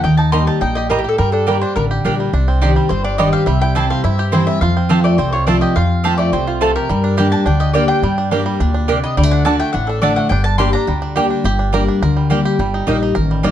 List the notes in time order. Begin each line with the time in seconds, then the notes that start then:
Already playing: A#3
0.04 D#2 D#3 D#4 G5
0.17 D#4 A5
0.32 G3 A#3 D#4 G4 D#5 A#5 C6
0.47 D#4 A5
0.61 A#1 A#2 D#4 G5
0.75 G4 D#5
0.89 A2 G3 A#3 G4 A#4 D#5 A#5
0.99 G4
1.04 G4
1.09 A4
1.18 G2 G3 A#4
1.32 D4 A4
1.47 G3 A#3 D4 G4 A#4 D5 G5
1.61 D4 C5
1.76 A1 D3 G3 A#4
1.91 G4
2.05 A#1 G3 A#3 D4 G4 D5 G5
2.20 G3
2.33 C2 C3 D4
2.48 C4
2.61 D#3 G3 D4 D#4 G4 D5 C6
2.76 G3
2.89 G1 G2 C4 C5
3.04 D4 D5
3.18 D#3 G3 D4 D#4 G4 D5 D#5 C6
3.33 G4 F5
3.46 C2 C3 G3 E5
3.61 E4 G5
3.75 E3 G3 C4 E4 G4 C5 G5 A5
3.90 C4 F5
4.04 G2 E4 E5
4.19 G4
4.32 E3 G3 C4 E4 C5 G5
4.47 E4 E5
4.61 F2 F4 F5
4.77 C4
4.89 F3 A3 C4 F4 G4 C5 A5
5.04 A3 D5
5.18 C2 C3 C4 C5
5.33 F4 C#5
5.47 F3 A3 C4 F4 C5 D5 A5
5.61 G4 D#5
5.76 F2 F4 F5
6.04 F3 A3 C4 F4 G4 C5 A5
6.18 A3 D5
6.32 C2 C3 C4 C5
6.47 F4
6.61 F2 A3 C4 F4 A4 C5 A5
6.76 G4 A#4
6.89 G2 G3
7.04 D4
7.17 G3 A#3 D4 G4 D5 G5
7.32 D4 A5
7.46 D2 D3 D4 G5
7.60 G4 D#5
7.73 G3 A#3 D4 G4 D5 G5
7.88 D4 G5
8.02 G2 G3
8.18 D4
8.31 G3 A#3 D4 G4 D5 G5
8.46 G3
8.60 D2 A#2 D4
8.74 D4
8.88 C3 A#3 D4 G4 D5 G5
9.03 G3 D#5
9.17 D2 D3 G3 D5
9.23 A3
9.31 D4 F#5
9.45 D3 A3 D4 F#4 D5 A5
9.59 A3 G5
9.73 A1 A2 D4 F#5
9.87 D4 A4
10.01 D3 A3 D4 F#4 D5 A5
10.16 A3 F#5
10.29 G1 G2 D4 G5
10.44 A5
10.58 G3 A#3 D4 G4 D5 G5 C6
10.73 D4 A#5
10.87 D2 D3 G3
11.02 D4
11.16 G3 A#3 D4 G4 D5 G5
11.30 D4
11.44 G1 G2 G4
11.59 D4
11.73 G3 A#3 D4 G4 A#4 D5 G5
11.88 D4
12.01 D2 D3 A#4
12.17 G3
12.30 G3 A#3 D4 G4 D5 G5
12.45 G4
12.59 G1 G2 G3
12.74 D#4
12.87 A#1 G3 A#3 D#4 G4 D#5 G5
13.03 D#4
13.15 A1 D#3 A#4
13.31 G3
13.43 G1 G3 A#3 D#4 G4 D5 D#5 G5